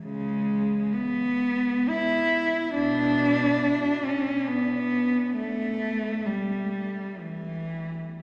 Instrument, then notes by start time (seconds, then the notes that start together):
cello
0.05 C#3 G#3
0.93 B3
1.89 E4
2.74 B2 D4
4.05 C#4
4.48 B3
5.37 A3
6.26 G3
7.21 E3